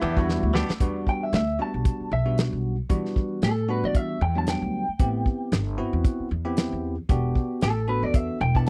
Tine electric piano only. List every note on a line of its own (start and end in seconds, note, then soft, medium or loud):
0.17 0.66 G3 loud
0.17 0.66 B3 medium
0.17 0.66 D4 medium
0.17 0.66 F#4 loud
0.81 1.41 G3 medium
0.81 1.41 B3 medium
0.81 1.41 D4 medium
0.81 1.41 F#4 medium
1.59 2.09 G3 medium
1.59 2.09 B3 medium
1.59 2.09 D4 medium
1.59 2.09 F#4 medium
2.26 2.75 G3 medium
2.26 2.75 B3 medium
2.26 2.75 D4 medium
2.26 2.75 F#4 medium
2.89 3.50 G3 medium
2.89 3.50 B3 medium
2.89 3.50 D4 medium
2.89 3.50 F#4 medium
3.68 4.18 G3 medium
3.68 4.18 B3 medium
3.68 4.18 D4 medium
3.68 4.19 F#4 medium
4.35 4.85 F#3 medium
4.35 4.85 G3 medium
4.35 4.85 B3 medium
4.35 4.85 D4 medium
4.99 5.60 B3 medium
4.99 5.60 C4 medium
4.99 5.60 E4 medium
4.99 5.60 G4 medium
5.78 6.28 B3 medium
5.78 6.28 C4 medium
5.78 6.28 E4 medium
5.78 6.28 F#4 medium
6.45 6.95 B3 medium
6.45 6.94 C4 medium
6.45 6.95 E4 medium
6.45 6.94 G4 medium
7.09 7.70 B3 medium
7.09 7.70 D4 medium
7.09 7.70 F#4 medium
7.09 7.70 G4 medium
7.88 8.38 B3 medium
7.88 8.38 D4 medium
7.88 8.38 F#4 medium
7.88 8.38 A4 medium
8.55 8.69 B3 medium
8.55 8.69 D4 medium
8.55 8.69 E4 medium
8.55 8.69 G4 medium